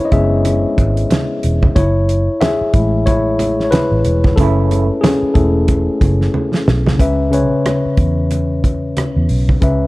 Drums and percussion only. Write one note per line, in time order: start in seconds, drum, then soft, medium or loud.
0.12 kick loud
0.12 closed hi-hat medium
0.45 closed hi-hat medium
0.45 muted conga soft
0.78 kick medium
0.78 closed hi-hat medium
0.78 muted conga soft
0.97 closed hi-hat medium
1.10 snare loud
1.10 closed hi-hat medium
1.10 high conga medium
1.43 closed hi-hat medium
1.63 kick medium
1.63 high conga medium
1.76 kick loud
1.76 closed hi-hat medium
1.76 muted conga medium
2.09 closed hi-hat medium
2.41 snare loud
2.41 closed hi-hat medium
2.41 high conga medium
2.74 kick medium
2.74 closed hi-hat medium
3.07 kick medium
3.07 closed hi-hat medium
3.07 muted conga soft
3.39 closed hi-hat medium
3.39 muted conga soft
3.60 snare soft
3.72 snare loud
3.72 closed hi-hat medium
3.72 high conga medium
4.05 closed hi-hat medium
4.24 kick medium
4.24 snare soft
4.24 high conga medium
4.38 kick loud
4.38 closed hi-hat medium
4.38 muted conga medium
4.71 closed hi-hat medium
4.71 muted conga soft
5.04 snare loud
5.04 closed hi-hat medium
5.04 high conga medium
5.35 kick medium
5.35 closed hi-hat medium
5.68 kick medium
5.68 closed hi-hat medium
5.68 muted conga soft
6.01 kick medium
6.01 closed hi-hat medium
6.01 muted conga soft
6.21 snare soft
6.34 high conga medium
6.54 snare medium
6.68 snare loud
6.86 snare medium
6.86 high conga medium
6.99 kick medium
6.99 closed hi-hat medium
6.99 muted conga soft
7.33 closed hi-hat medium
7.33 muted conga soft
7.66 cross-stick medium
7.66 closed hi-hat medium
7.66 high conga medium
7.97 kick medium
7.97 closed hi-hat medium
8.31 closed hi-hat medium
8.31 muted conga soft
8.64 kick medium
8.64 closed hi-hat medium
8.64 muted conga soft
8.97 cross-stick loud
8.97 closed hi-hat medium
8.97 high conga medium
9.29 open hi-hat medium
9.49 kick medium
9.49 cross-stick soft
9.49 high conga medium
9.62 kick loud
9.62 closed hi-hat medium
9.62 muted conga soft